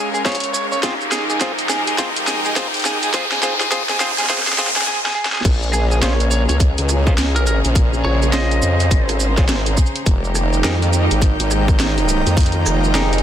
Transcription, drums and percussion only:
0.15 shaker soft
0.25 kick loud
0.25 snare medium
0.25 closed hi-hat soft
0.25 shaker soft
0.29 closed hi-hat soft
0.32 closed hi-hat soft
0.35 closed hi-hat medium
0.40 closed hi-hat medium
0.44 closed hi-hat soft
0.44 shaker soft
0.55 shaker medium
0.72 shaker soft
0.83 kick medium
0.83 snare medium
0.83 closed hi-hat medium
0.83 shaker soft
1.01 shaker soft
1.12 snare medium
1.12 shaker medium
1.30 shaker soft
1.41 kick loud
1.41 snare medium
1.41 closed hi-hat medium
1.41 shaker soft
1.59 closed hi-hat soft
1.59 shaker soft
1.69 snare medium
1.69 shaker medium
1.87 closed hi-hat medium
1.98 kick loud
1.98 snare medium
1.98 closed hi-hat medium
1.98 shaker soft
2.16 closed hi-hat medium
2.16 shaker soft
2.27 snare medium
2.27 shaker medium
2.45 shaker soft
2.56 kick medium
2.56 snare medium
2.56 closed hi-hat medium
2.56 shaker soft
2.74 closed hi-hat soft
2.74 shaker soft
2.77 closed hi-hat soft
2.80 closed hi-hat soft
2.82 snare medium
2.82 closed hi-hat soft
2.82 shaker medium
2.89 closed hi-hat soft
2.94 closed hi-hat soft
2.98 closed hi-hat soft
3.03 closed hi-hat soft
3.03 shaker soft
3.14 kick loud
3.14 snare medium
3.14 closed hi-hat medium
3.14 shaker soft
3.32 snare medium
3.32 shaker soft
3.43 snare medium
3.43 shaker medium
3.61 snare medium
3.61 closed hi-hat soft
3.61 shaker soft
3.72 kick loud
3.72 snare medium
3.72 closed hi-hat medium
3.72 shaker soft
3.89 snare medium
3.89 closed hi-hat soft
3.89 shaker soft
4.00 snare loud
4.00 shaker medium
4.18 snare soft
4.18 closed hi-hat medium
4.18 shaker soft
4.21 snare soft
4.24 snare medium
4.27 kick loud
4.27 snare medium
4.30 snare loud
4.30 closed hi-hat medium
4.30 shaker soft
4.34 snare medium
4.38 snare medium
4.43 snare medium
4.47 snare loud
4.47 closed hi-hat medium
4.47 shaker soft
4.53 snare loud
4.58 snare loud
4.58 shaker medium
4.67 snare medium
4.76 snare loud
4.76 closed hi-hat soft
4.76 shaker soft
4.82 snare loud
4.87 snare medium
5.06 snare medium
5.25 snare medium
5.32 snare medium
5.36 snare medium
5.38 snare soft
5.41 snare soft
5.44 kick loud
5.44 snare soft
5.44 closed hi-hat medium
5.44 crash loud
5.44 shaker soft
5.48 snare soft
5.52 snare soft
5.63 shaker soft
5.74 cross-stick medium
5.74 shaker medium
5.91 shaker soft
6.03 snare loud
6.03 closed hi-hat medium
6.03 shaker soft
6.20 closed hi-hat soft
6.20 shaker soft
6.31 shaker medium
6.49 closed hi-hat medium
6.49 shaker soft
6.60 kick loud
6.60 closed hi-hat medium
6.60 shaker soft
6.78 closed hi-hat medium
6.78 shaker soft
6.89 cross-stick soft
6.89 shaker medium
7.07 kick loud
7.07 shaker soft
7.18 snare loud
7.18 closed hi-hat medium
7.18 shaker soft
7.36 closed hi-hat soft
7.36 shaker soft
7.47 shaker medium
7.65 closed hi-hat soft
7.65 shaker soft
7.75 kick loud
7.75 closed hi-hat medium
7.75 shaker soft
7.94 shaker soft
8.04 cross-stick medium
8.22 shaker soft
8.33 snare loud
8.33 closed hi-hat medium
8.33 shaker soft
8.51 closed hi-hat soft
8.51 shaker soft
8.62 shaker medium
8.80 closed hi-hat medium
8.80 shaker soft
8.91 kick loud
8.91 closed hi-hat medium
8.91 shaker soft
9.09 cross-stick soft
9.09 closed hi-hat medium
9.09 shaker soft
9.20 shaker medium
9.37 kick loud
9.37 cross-stick medium
9.37 snare soft
9.37 closed hi-hat soft
9.37 shaker soft
9.49 snare loud
9.49 closed hi-hat medium
9.49 shaker soft
9.66 closed hi-hat soft
9.66 shaker soft
9.77 kick medium
9.77 shaker medium
9.86 shaker soft
9.96 closed hi-hat soft
10.06 kick loud
10.06 closed hi-hat medium
10.06 shaker soft
10.24 shaker soft
10.35 cross-stick medium
10.35 shaker medium
10.53 shaker soft
10.64 snare loud
10.64 closed hi-hat medium
10.64 shaker soft
10.82 closed hi-hat soft
10.82 shaker soft
10.93 shaker medium
11.11 closed hi-hat medium
11.11 shaker soft
11.22 kick loud
11.22 closed hi-hat medium
11.22 shaker soft
11.40 closed hi-hat medium
11.40 shaker soft
11.51 cross-stick soft
11.51 shaker medium
11.68 kick loud
11.68 shaker soft
11.80 snare loud
11.80 closed hi-hat medium
11.80 shaker soft
11.98 closed hi-hat soft
11.98 shaker soft
12.09 shaker medium
12.27 closed hi-hat soft
12.27 shaker soft
12.37 kick loud
12.37 closed hi-hat medium
12.37 shaker soft
12.40 closed hi-hat medium
12.43 closed hi-hat medium
12.46 closed hi-hat soft
12.52 closed hi-hat soft
12.66 cross-stick soft
12.66 shaker medium
12.84 shaker soft
12.95 snare loud
12.95 closed hi-hat medium
12.95 shaker soft
13.13 closed hi-hat soft
13.13 shaker soft
13.18 closed hi-hat soft

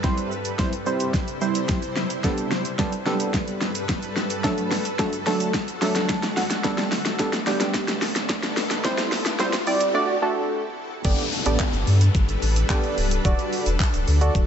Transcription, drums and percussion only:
0.04 kick loud
0.04 snare medium
0.04 shaker medium
0.18 closed hi-hat soft
0.18 shaker soft
0.32 shaker medium
0.45 closed hi-hat medium
0.45 shaker medium
0.59 kick loud
0.59 snare medium
0.59 shaker medium
0.73 closed hi-hat medium
0.73 shaker medium
0.86 shaker medium
1.00 closed hi-hat medium
1.00 shaker medium
1.14 kick loud
1.14 snare medium
1.14 shaker medium
1.28 closed hi-hat medium
1.28 shaker medium
1.41 shaker medium
1.55 closed hi-hat medium
1.55 shaker medium
1.69 kick loud
1.69 snare medium
1.69 shaker medium
1.82 closed hi-hat soft
1.82 shaker soft
1.96 snare medium
1.96 shaker medium
2.10 closed hi-hat medium
2.10 shaker medium
2.24 kick loud
2.24 snare medium
2.24 shaker medium
2.38 closed hi-hat soft
2.38 shaker soft
2.51 snare medium
2.51 shaker medium
2.65 closed hi-hat medium
2.65 shaker medium
2.79 kick loud
2.79 snare medium
2.79 shaker medium
2.92 closed hi-hat medium
2.92 shaker medium
3.06 snare medium
3.06 shaker medium
3.20 closed hi-hat medium
3.20 shaker medium
3.34 kick loud
3.34 snare medium
3.34 shaker medium
3.48 closed hi-hat medium
3.48 shaker medium
3.61 snare medium
3.61 shaker medium
3.75 closed hi-hat medium
3.75 shaker medium
3.89 kick loud
3.89 snare medium
3.89 shaker medium
4.03 closed hi-hat soft
4.03 shaker soft
4.16 snare medium
4.16 shaker medium
4.30 closed hi-hat medium
4.30 shaker medium
4.44 kick loud
4.44 snare loud
4.44 shaker medium
4.58 closed hi-hat soft
4.58 shaker soft
4.71 snare medium
4.71 open hi-hat medium
4.71 shaker soft
4.85 closed hi-hat medium
4.85 shaker medium
4.99 kick loud
4.99 snare loud
4.99 shaker medium
5.13 closed hi-hat medium
5.13 shaker medium
5.26 snare loud
5.26 open hi-hat medium
5.26 shaker medium
5.40 closed hi-hat medium
5.40 shaker medium
5.54 kick loud
5.54 snare loud
5.54 shaker medium
5.68 closed hi-hat medium
5.68 shaker medium
5.82 snare loud
5.82 open hi-hat medium
5.82 shaker medium
5.95 snare loud
5.95 closed hi-hat medium
5.95 shaker medium
6.09 kick loud
6.09 snare loud
6.09 shaker medium
6.23 snare loud
6.23 closed hi-hat soft
6.23 shaker soft
6.37 snare loud
6.37 open hi-hat medium
6.37 shaker medium
6.50 snare medium
6.50 closed hi-hat medium
6.50 shaker medium
6.64 kick loud
6.64 snare loud
6.64 shaker medium
6.78 snare loud
6.78 closed hi-hat soft
6.78 shaker medium
6.92 snare loud
6.92 open hi-hat medium
6.92 shaker soft
7.05 snare loud
7.05 closed hi-hat medium
7.05 shaker medium
7.19 kick loud
7.19 snare loud
7.19 shaker medium
7.33 snare loud
7.33 closed hi-hat medium
7.33 shaker medium
7.47 snare loud
7.47 open hi-hat medium
7.47 shaker medium
7.60 snare loud
7.60 closed hi-hat medium
7.60 shaker medium
7.74 kick loud
7.74 snare loud
7.74 shaker medium
7.88 snare loud
7.88 closed hi-hat medium
7.88 shaker medium
8.02 snare loud
8.02 open hi-hat medium
8.02 shaker medium
8.16 snare loud
8.16 closed hi-hat medium
8.16 shaker medium
8.29 kick loud
8.29 snare loud
8.29 shaker medium
8.43 snare loud
8.43 closed hi-hat soft
8.43 shaker soft
8.57 snare loud
8.57 open hi-hat medium
8.57 shaker medium
8.71 snare loud
8.71 closed hi-hat medium
8.71 shaker medium
8.84 kick loud
8.84 snare loud
8.84 shaker medium
8.98 snare loud
8.98 closed hi-hat soft
8.98 shaker soft
9.12 snare loud
9.12 open hi-hat medium
9.12 shaker medium
9.26 snare loud
9.26 closed hi-hat medium
9.26 shaker medium
9.39 snare loud
9.39 shaker medium
9.53 snare loud
9.53 closed hi-hat medium
9.53 shaker medium
9.67 open hi-hat medium
9.67 shaker medium
9.81 closed hi-hat medium
9.81 shaker medium
11.05 kick loud
11.05 crash loud
11.05 shaker medium
11.18 closed hi-hat soft
11.18 shaker soft
11.32 open hi-hat medium
11.32 shaker medium
11.46 closed hi-hat medium
11.46 shaker medium
11.60 kick loud
11.60 clap loud
11.60 shaker medium
11.73 closed hi-hat medium
11.73 shaker medium
11.87 open hi-hat medium
11.87 shaker medium
12.01 closed hi-hat medium
12.01 shaker medium
12.15 kick loud
12.15 shaker medium
12.29 closed hi-hat medium
12.29 shaker medium
12.42 open hi-hat medium
12.42 shaker medium
12.56 closed hi-hat medium
12.56 shaker medium
12.70 kick loud
12.70 clap loud
12.70 shaker medium
12.84 closed hi-hat soft
12.84 shaker soft
12.98 open hi-hat medium
12.98 shaker medium
13.11 closed hi-hat medium
13.11 shaker medium
13.25 kick loud
13.25 shaker medium
13.39 closed hi-hat soft
13.39 shaker medium
13.53 open hi-hat medium
13.53 shaker medium
13.66 closed hi-hat medium
13.66 shaker medium
13.80 kick loud
13.80 clap loud
13.80 shaker medium
13.94 closed hi-hat medium
13.94 shaker medium
14.08 open hi-hat medium
14.08 shaker medium
14.21 closed hi-hat medium
14.21 shaker medium
14.35 kick loud
14.35 shaker medium

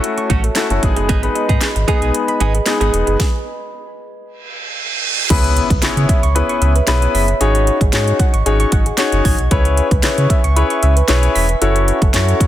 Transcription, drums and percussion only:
0.04 closed hi-hat loud
0.18 closed hi-hat soft
0.30 kick loud
0.30 closed hi-hat medium
0.44 closed hi-hat medium
0.55 snare medium
0.55 clap loud
0.55 closed hi-hat medium
0.70 closed hi-hat medium
0.83 kick medium
0.83 closed hi-hat medium
0.96 closed hi-hat medium
1.09 kick loud
1.09 closed hi-hat medium
1.23 closed hi-hat medium
1.36 closed hi-hat medium
1.49 kick medium
1.49 closed hi-hat medium
1.61 snare medium
1.61 clap loud
1.61 closed hi-hat medium
1.76 closed hi-hat medium
1.88 kick medium
1.88 closed hi-hat medium
2.02 closed hi-hat medium
2.14 closed hi-hat loud
2.28 closed hi-hat medium
2.40 closed hi-hat medium
2.55 closed hi-hat medium
2.66 snare loud
2.66 clap loud
2.66 closed hi-hat medium
2.81 closed hi-hat medium
2.94 closed hi-hat medium
3.07 closed hi-hat medium
3.20 kick loud
3.20 snare medium
5.30 kick loud
5.30 closed hi-hat medium
5.30 crash loud
5.44 closed hi-hat medium
5.57 closed hi-hat medium
5.70 kick medium
5.70 closed hi-hat medium
5.82 snare medium
5.82 clap loud
5.82 closed hi-hat medium
5.97 closed hi-hat medium
6.09 kick loud
6.09 closed hi-hat medium
6.23 closed hi-hat medium
6.36 closed hi-hat loud
6.49 closed hi-hat medium
6.62 closed hi-hat medium
6.76 closed hi-hat medium
6.87 snare loud
6.87 clap loud
6.87 closed hi-hat medium
7.02 closed hi-hat medium
7.15 open hi-hat medium
7.28 closed hi-hat medium
7.41 closed hi-hat medium
7.55 closed hi-hat medium
7.67 closed hi-hat medium
7.81 kick loud
7.81 closed hi-hat medium
7.93 snare medium
7.93 clap loud
7.93 closed hi-hat loud
8.08 closed hi-hat medium
8.19 kick loud
8.19 closed hi-hat medium
8.34 closed hi-hat medium
8.46 closed hi-hat loud
8.60 closed hi-hat medium
8.72 kick loud
8.72 closed hi-hat medium
8.86 closed hi-hat medium
8.97 snare loud
8.97 clap loud
8.97 closed hi-hat medium
9.12 closed hi-hat medium
9.25 kick loud
9.25 open hi-hat medium
9.38 closed hi-hat medium
9.51 kick loud
9.51 closed hi-hat loud
9.65 closed hi-hat medium
9.77 closed hi-hat medium
9.91 kick loud
9.91 closed hi-hat medium
10.03 snare loud
10.03 clap loud
10.03 closed hi-hat medium
10.18 closed hi-hat medium
10.30 kick loud
10.30 closed hi-hat medium
10.44 closed hi-hat medium
10.56 closed hi-hat loud
10.70 closed hi-hat medium
10.83 closed hi-hat medium
10.97 closed hi-hat medium
11.08 snare loud
11.08 clap loud
11.08 closed hi-hat medium
11.23 closed hi-hat medium
11.36 open hi-hat medium
11.49 closed hi-hat medium
11.62 closed hi-hat medium
11.76 closed hi-hat medium
11.88 closed hi-hat medium
12.02 kick loud
12.02 closed hi-hat medium
12.14 snare loud
12.14 clap loud
12.14 closed hi-hat medium
12.29 closed hi-hat medium
12.40 kick loud
12.40 closed hi-hat medium

